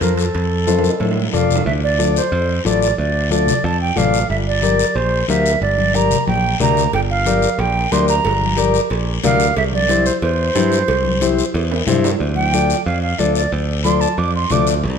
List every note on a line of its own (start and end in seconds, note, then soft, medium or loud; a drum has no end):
0.01 0.28 F2 medium
0.01 0.24 F4 medium
0.01 0.25 A4 medium
0.01 0.17 A#4 medium
0.01 0.25 C5 medium
0.01 high conga medium
0.01 high timbale medium
0.01 short guiro medium
0.17 1.07 A4 medium
0.17 high timbale medium
0.17 short guiro medium
0.35 0.88 F2 loud
0.35 high timbale medium
0.35 long guiro medium
0.67 0.90 F4 medium
0.67 0.90 A4 medium
0.67 0.91 C5 loud
0.67 high conga medium
0.67 high timbale medium
0.67 short guiro medium
0.79 high timbale medium
0.84 high conga medium
0.84 short guiro medium
0.89 high timbale medium
1.00 1.27 A2 medium
1.00 high conga medium
1.00 low timbale medium
1.00 long guiro medium
1.11 low timbale medium
1.22 low timbale medium
1.33 1.60 F2 medium
1.33 1.56 F4 medium
1.33 1.56 A4 medium
1.33 1.56 D5 medium
1.33 1.64 F5 medium
1.33 low conga medium
1.33 low timbale medium
1.33 short guiro medium
1.50 low conga medium
1.50 short guiro medium
1.56 low timbale loud
1.66 2.19 D2 loud
1.66 1.72 E5 medium
1.66 long guiro medium
1.84 2.14 D5 medium
1.99 2.22 F4 medium
1.99 2.22 A4 medium
1.99 2.22 D5 medium
1.99 high conga medium
1.99 short guiro medium
2.16 2.62 C5 medium
2.16 short guiro medium
2.32 2.58 F2 loud
2.32 long guiro medium
2.65 2.91 A1 loud
2.65 2.88 F4 medium
2.65 2.89 A4 medium
2.65 2.89 D5 medium
2.65 2.82 D5 medium
2.65 high conga medium
2.65 short guiro medium
2.82 2.98 D5 medium
2.82 short guiro medium
2.98 3.51 D2 loud
2.98 3.29 D5 medium
2.98 long guiro medium
3.31 3.54 F4 medium
3.31 3.54 A4 medium
3.31 3.54 D5 medium
3.31 3.66 D5 medium
3.31 high conga medium
3.31 short guiro medium
3.47 low conga medium
3.47 short guiro medium
3.64 3.90 F2 loud
3.64 3.81 A5 medium
3.64 long guiro medium
3.81 3.99 G5 medium
3.96 4.23 A1 loud
3.96 4.19 F4 medium
3.96 4.20 A4 medium
3.96 4.20 D5 medium
3.96 4.30 F5 medium
3.96 high conga medium
3.96 low conga medium
3.96 short guiro medium
4.14 short guiro medium
4.30 4.82 G1 medium
4.30 4.36 E5 medium
4.30 long guiro medium
4.48 4.97 D5 medium
4.62 4.86 G4 medium
4.62 4.86 A#4 medium
4.62 4.86 D5 medium
4.62 high conga medium
4.62 short guiro medium
4.79 short guiro medium
4.95 5.22 A#1 medium
4.95 5.28 C5 medium
4.95 long guiro medium
5.28 5.55 D2 loud
5.28 5.52 G4 medium
5.28 5.52 A#4 medium
5.28 5.60 E5 loud
5.28 5.52 F5 medium
5.28 high conga medium
5.28 short guiro medium
5.46 short guiro medium
5.62 6.14 G1 loud
5.62 5.96 D5 medium
5.62 long guiro medium
5.78 high conga medium
5.94 6.18 G4 medium
5.94 6.18 A#4 medium
5.94 6.18 D5 medium
5.94 6.27 A#5 loud
5.94 high conga medium
5.94 short guiro medium
6.11 low conga medium
6.11 short guiro medium
6.27 6.54 A#1 medium
6.27 6.58 G5 loud
6.27 high conga medium
6.27 long guiro medium
6.60 6.87 D2 medium
6.60 6.83 G4 medium
6.60 6.83 A#4 medium
6.60 6.84 D5 medium
6.60 6.92 A#5 loud
6.60 low conga loud
6.60 short guiro medium
6.76 low conga medium
6.76 short guiro medium
6.93 7.46 G1 medium
6.93 7.00 G5 loud
6.93 cowbell loud
6.93 long guiro medium
7.11 7.61 F5 loud
7.26 7.49 G4 medium
7.26 7.49 A#4 medium
7.26 7.50 D5 medium
7.26 cowbell medium
7.26 high conga medium
7.26 short guiro medium
7.42 short guiro medium
7.59 7.85 A#1 loud
7.59 7.94 G5 loud
7.59 cowbell medium
7.59 long guiro medium
7.92 8.19 D2 medium
7.92 8.15 G4 medium
7.92 8.15 A#4 medium
7.92 8.15 D5 medium
7.92 8.09 C6 loud
7.92 cowbell medium
7.92 high conga medium
7.92 low timbale medium
7.92 short guiro medium
8.08 8.77 A#5 loud
8.08 short guiro medium
8.25 8.78 G1 loud
8.25 cowbell loud
8.25 long guiro medium
8.41 high conga medium
8.57 8.80 G4 medium
8.57 8.81 A#4 medium
8.57 8.81 D5 loud
8.57 cowbell medium
8.57 high conga medium
8.57 short guiro medium
8.74 short guiro medium
8.90 9.17 A#1 loud
8.90 cowbell medium
8.90 long guiro medium
9.23 9.50 D2 loud
9.23 9.47 G4 medium
9.23 9.47 A#4 medium
9.23 9.47 D5 medium
9.23 9.55 F5 loud
9.23 cowbell medium
9.23 high conga medium
9.23 low conga medium
9.23 low timbale medium
9.23 short guiro medium
9.40 short guiro medium
9.56 10.10 C2 loud
9.56 9.64 E5 loud
9.56 cowbell loud
9.56 long guiro medium
9.72 10.08 D5 loud
9.72 high conga medium
9.89 10.13 E4 medium
9.89 10.13 G4 medium
9.89 10.13 C5 medium
9.89 cowbell medium
9.89 high conga medium
9.89 short guiro medium
10.06 10.21 C5 medium
10.06 short guiro medium
10.21 10.49 E2 medium
10.21 11.83 C5 medium
10.21 cowbell medium
10.21 long guiro medium
10.55 10.82 G2 loud
10.55 10.79 E4 medium
10.55 10.79 G4 medium
10.55 10.79 C5 medium
10.55 cowbell medium
10.55 high conga medium
10.55 low timbale medium
10.55 short guiro medium
10.72 short guiro medium
10.88 11.41 C2 loud
10.88 cowbell loud
10.88 long guiro medium
11.04 high conga medium
11.21 11.45 E4 medium
11.21 11.45 G4 medium
11.21 11.45 C5 loud
11.21 cowbell medium
11.21 high conga medium
11.21 short guiro medium
11.39 short guiro medium
11.54 11.81 E2 loud
11.54 cowbell medium
11.54 long guiro medium
11.72 high timbale medium
11.87 12.14 G2 loud
11.87 12.10 E4 medium
11.87 12.11 G4 medium
11.87 12.11 C5 medium
11.87 cowbell medium
11.87 high conga medium
11.87 low conga medium
11.87 short guiro medium
12.04 low timbale loud
12.04 short guiro medium
12.20 12.73 D2 loud
12.20 long guiro medium
12.36 12.84 G5 loud
12.36 high conga medium
12.53 12.77 F4 medium
12.53 12.77 A4 medium
12.53 12.77 D5 medium
12.53 high conga medium
12.53 short guiro medium
12.70 short guiro medium
12.86 13.13 F2 medium
12.86 13.02 F5 medium
12.86 long guiro medium
13.02 13.21 F5 medium
13.19 13.46 D2 medium
13.19 13.42 F4 medium
13.19 13.42 A4 medium
13.19 13.35 D5 medium
13.19 13.43 D5 medium
13.19 high conga medium
13.19 short guiro medium
13.35 13.52 D5 medium
13.35 short guiro medium
13.52 14.05 D2 loud
13.52 long guiro medium
13.84 14.08 F4 medium
13.84 14.08 A4 medium
13.84 14.09 D5 medium
13.84 14.02 C6 loud
13.84 high conga medium
13.84 short guiro medium
14.01 14.20 A5 medium
14.01 short guiro medium
14.17 14.44 F2 loud
14.17 14.34 D6 medium
14.17 long guiro medium
14.36 14.54 C6 medium
14.50 14.85 D2 medium
14.50 14.74 F4 medium
14.50 14.74 A4 medium
14.50 14.75 D5 medium
14.50 14.67 D6 medium
14.50 high conga medium
14.50 low conga medium
14.50 short guiro medium
14.67 short guiro medium
14.83 14.99 C2 loud
14.83 long guiro medium